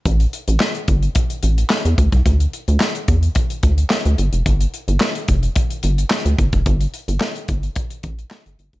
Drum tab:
HH |xxxx-xxxxxxx-xxx|xxxx-xxxxxxx-xxx|xxxx-xxxxxxx-xxx|xxxx-xxxxxxx-xxx|
CP |----x-------x---|----x-------x---|----x-------x---|----x-------x---|
SD |----o-------o---|----o-------o---|----o-------o---|----o-------o---|
BD |o-----o-o-----oo|o-----o-o-o-----|o-----o-o-----oo|o-----o-o-o----o|